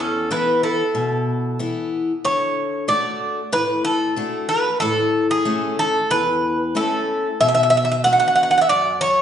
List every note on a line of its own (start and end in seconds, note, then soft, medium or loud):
0.00 0.29 E2 medium
0.00 0.29 C#4 medium
0.00 0.29 A4 medium
0.31 0.82 E3 medium
0.31 0.82 B3 soft
0.31 0.82 E4 soft
0.31 0.62 E4 medium
0.31 0.61 B4 medium
0.63 1.88 E4 medium
0.63 1.88 A4 medium
0.95 1.57 B2 medium
1.59 2.11 E3 soft
1.59 2.11 B3 soft
1.59 2.11 E4 medium
2.25 2.87 D3 medium
2.25 2.85 C#5 medium
2.88 3.39 A3 soft
2.88 3.40 D4 soft
2.88 3.40 F#4 medium
2.88 3.49 D5 medium
3.52 4.15 A2 medium
3.52 3.83 B4 medium
3.85 4.45 A4 medium
4.16 4.68 A3 soft
4.16 4.68 D4 soft
4.16 4.69 F#4 medium
4.49 4.79 B4 medium
4.80 5.44 A2 medium
4.80 5.26 A4 medium
5.31 5.75 G#4 medium
5.45 5.97 A3 medium
5.45 5.98 C#4 soft
5.45 5.98 E4 soft
5.79 6.09 A4 medium
6.10 6.73 E2 medium
6.10 6.76 B4 loud
6.75 7.27 A3 soft
6.75 7.27 C#4 soft
6.75 7.27 E4 soft
6.75 7.40 A4 medium
7.41 8.03 B2 medium
7.41 7.47 E5 loud
7.48 7.53 E5 medium
7.55 7.62 E5 medium
7.63 7.69 E5 medium
7.70 7.76 E5 medium
7.77 7.84 E5 medium
7.85 7.90 E5 medium
7.92 8.00 E5 medium
8.04 8.57 B3 soft
8.04 8.57 D4 soft
8.04 8.57 F#4 medium
8.04 8.11 F#5 loud
8.13 8.18 F#5 medium
8.20 8.26 F#5 medium
8.28 8.34 F#5 medium
8.36 8.42 F#5 medium
8.43 8.49 F#5 medium
8.51 8.56 F#5 medium
8.58 8.69 E5 medium
8.58 8.61 F#5 medium
8.69 9.22 F#2 medium
8.69 8.99 D5 loud
9.01 9.22 C#5 loud